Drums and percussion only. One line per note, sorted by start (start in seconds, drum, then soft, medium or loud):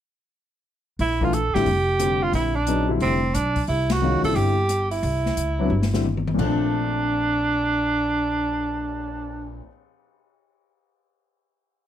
0.99 open hi-hat soft
1.21 kick medium
1.33 closed hi-hat soft
1.55 snare soft
1.66 open hi-hat soft
2.00 cross-stick medium
2.00 closed hi-hat medium
2.33 open hi-hat soft
2.67 closed hi-hat soft
3.00 open hi-hat soft
3.35 cross-stick medium
3.35 closed hi-hat soft
3.56 kick medium
3.56 open hi-hat soft
3.67 open hi-hat soft
3.90 snare medium
3.90 ride medium
4.24 open hi-hat soft
4.36 open hi-hat soft
4.69 cross-stick medium
4.69 closed hi-hat medium
4.91 open hi-hat soft
5.03 open hi-hat soft
5.26 snare soft
5.37 closed hi-hat soft
5.82 snare medium
5.94 snare medium
6.05 high tom medium
6.17 high tom medium
6.28 high tom medium
6.39 kick soft
6.39 crash medium
6.61 cymbal swell soft